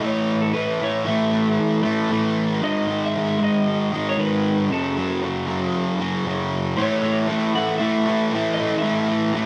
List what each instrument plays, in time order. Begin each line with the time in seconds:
0.01 distorted electric guitar A2 E3 A3
0.06 clean electric guitar C#5
0.42 clean electric guitar A4
0.53 distorted electric guitar A2 E3 A3, clean electric guitar B4
0.80 distorted electric guitar E3 A3, clean electric guitar C#5
1.05 distorted electric guitar A2 E3 A3, clean electric guitar E5
1.31 distorted electric guitar E3 A3
1.83 distorted electric guitar E3 A3
2.10 distorted electric guitar A2 E3 A3
2.61 distorted electric guitar G#2 D#3 G#3, clean electric guitar D#5
2.87 distorted electric guitar D#3 G#3
3.05 clean electric guitar E5
3.15 distorted electric guitar G#2 D#3 G#3
3.39 distorted electric guitar D#3 G#3
3.44 clean electric guitar D#5
3.92 distorted electric guitar D#3 G#3
4.09 clean electric guitar C#5
4.17 distorted electric guitar G#2 D#3 G#3, clean electric guitar B4
4.69 distorted electric guitar F#2 C#3 F#3, clean electric guitar A4
4.96 distorted electric guitar C#3 F#3
5.22 distorted electric guitar F#2 C#3 F#3
5.47 distorted electric guitar C#3 F#3
6.00 distorted electric guitar C#3 F#3
6.25 distorted electric guitar F#2 C#3 F#3
6.77 distorted electric guitar A2 E3 A3, clean electric guitar C#5
7.02 distorted electric guitar E3 A3
7.28 distorted electric guitar A2 E3 A3
7.55 distorted electric guitar E3 A3, clean electric guitar F#5
7.78 distorted electric guitar A2 E3, clean electric guitar E5
7.83 distorted electric guitar A3
8.06 distorted electric guitar E3 A3
8.32 distorted electric guitar A2 E3 A3
8.54 distorted electric guitar A3, clean electric guitar D#5
8.61 distorted electric guitar E3
8.79 distorted electric guitar A2, clean electric guitar E5
8.84 distorted electric guitar E3 A3
9.09 distorted electric guitar E3 A3
9.34 distorted electric guitar A2 E3 A3